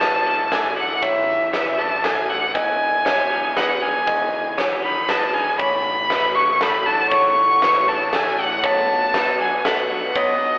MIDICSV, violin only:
0, 0, Header, 1, 2, 480
1, 0, Start_track
1, 0, Tempo, 507185
1, 974, Time_signature, 3, 2, 24, 8
1, 10017, End_track
2, 0, Start_track
2, 0, Title_t, "Violin"
2, 0, Program_c, 0, 40
2, 0, Note_on_c, 0, 81, 83
2, 492, Note_on_c, 0, 80, 67
2, 506, Note_off_c, 0, 81, 0
2, 726, Note_off_c, 0, 80, 0
2, 732, Note_on_c, 0, 78, 66
2, 968, Note_on_c, 0, 76, 72
2, 982, Note_off_c, 0, 78, 0
2, 1451, Note_off_c, 0, 76, 0
2, 1456, Note_on_c, 0, 76, 61
2, 1692, Note_on_c, 0, 81, 67
2, 1706, Note_off_c, 0, 76, 0
2, 1937, Note_on_c, 0, 80, 61
2, 1951, Note_off_c, 0, 81, 0
2, 2176, Note_on_c, 0, 78, 72
2, 2190, Note_off_c, 0, 80, 0
2, 2415, Note_off_c, 0, 78, 0
2, 2420, Note_on_c, 0, 80, 79
2, 3378, Note_on_c, 0, 78, 63
2, 3392, Note_off_c, 0, 80, 0
2, 3613, Note_on_c, 0, 80, 69
2, 3627, Note_off_c, 0, 78, 0
2, 4333, Note_off_c, 0, 80, 0
2, 4575, Note_on_c, 0, 83, 65
2, 4822, Note_on_c, 0, 81, 68
2, 4836, Note_off_c, 0, 83, 0
2, 5054, Note_on_c, 0, 80, 76
2, 5068, Note_off_c, 0, 81, 0
2, 5286, Note_off_c, 0, 80, 0
2, 5292, Note_on_c, 0, 83, 77
2, 6011, Note_on_c, 0, 85, 68
2, 6025, Note_off_c, 0, 83, 0
2, 6257, Note_on_c, 0, 83, 70
2, 6272, Note_off_c, 0, 85, 0
2, 6494, Note_on_c, 0, 81, 81
2, 6508, Note_off_c, 0, 83, 0
2, 6721, Note_off_c, 0, 81, 0
2, 6727, Note_on_c, 0, 85, 80
2, 7458, Note_on_c, 0, 81, 71
2, 7472, Note_off_c, 0, 85, 0
2, 7710, Note_on_c, 0, 80, 73
2, 7724, Note_off_c, 0, 81, 0
2, 7950, Note_on_c, 0, 78, 78
2, 7964, Note_off_c, 0, 80, 0
2, 8186, Note_on_c, 0, 81, 94
2, 8200, Note_off_c, 0, 78, 0
2, 8897, Note_off_c, 0, 81, 0
2, 8903, Note_on_c, 0, 80, 66
2, 9137, Note_on_c, 0, 78, 61
2, 9151, Note_off_c, 0, 80, 0
2, 9615, Note_on_c, 0, 75, 74
2, 9630, Note_off_c, 0, 78, 0
2, 10017, Note_off_c, 0, 75, 0
2, 10017, End_track
0, 0, End_of_file